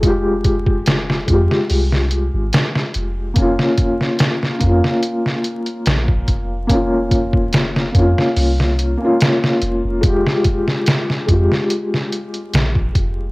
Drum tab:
HH |x-x-x-x-o-x-x-x-|x-x-x-x-x-xxx-x-|x-x-x-x-o-x-x-x-|x-x-x-x-x-xxx-x-|
SD |----oo-o-o--oo--|-o-ooo-o-o--o---|----oo-o-o--oo--|-o-ooo-o-o--o---|
BD |o-oo--o---------|o-o---o------oo-|o-oo--o---------|o-o---o------oo-|